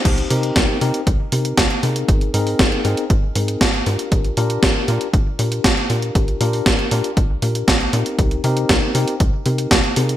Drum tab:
CC |x---------------|----------------|----------------|----------------|
HH |xxoxx-oxx-oxxxox|xxooxxoxx-oxxxox|xxoxx-oxx-oxxxox|xxooxxoxx-oxxxox|
SD |----o-------o---|----o-------o---|----o-------o---|----o-------o---|
BD |o---o---o---o---|o---o---o---o---|o---o---o---o---|o---o---o---o---|

CC |----------------|
HH |xxoxx-oxx-oxxxox|
SD |----o-------o---|
BD |o---o---o---o---|